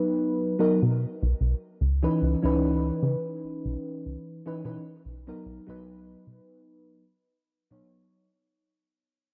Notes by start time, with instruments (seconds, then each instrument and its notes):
Already playing: fm electric piano F#3 B3 D#4 B4
0.59 fm electric piano F#3 B3 D#4 A#4
0.82 analog synth bass B2
1.22 analog synth bass B1
1.41 analog synth bass B1
1.81 analog synth bass C#2
2.02 fm electric piano E3 C#4 D#4 B4
2.22 analog synth bass C#2
2.42 analog synth bass C#2, fm electric piano E3 C#4 D#4 B4
3.03 analog synth bass C#3
3.43 analog synth bass B1
3.65 analog synth bass B1
4.06 analog synth bass C#2
4.46 fm electric piano E3 C#4 D#4 B4
4.64 analog synth bass B2, fm electric piano E3 C#4 D#4 B4
5.05 analog synth bass B1
5.27 fm electric piano F#3 B3 D#4 A#4
5.46 analog synth bass B1
5.67 analog synth bass B1, fm electric piano F#3 B3 D#4 B4
6.27 analog synth bass B2
7.71 analog synth bass B2, fm electric piano F#3 B3 D#4 C#5